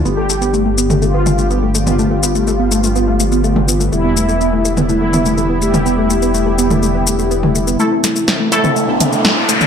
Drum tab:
HH |----------------|----------------|----------------|----------------|
SH |x-xxx-xxx-xxx-xx|x-xxx-xxx-xxx-xx|x-xxx-xxx-xxx-xx|x-xxx-xxx-xxx-xx|
SD |----------------|----------------|----------------|----------------|
T2 |-------o--o----o|-------------o--|-------o--o----o|-------o-----o--|

HH |--o---o---o---o-|
SH |x-xxx-xxx-xxx-xx|
SD |--o-o-------o---|
T2 |-------o--o----o|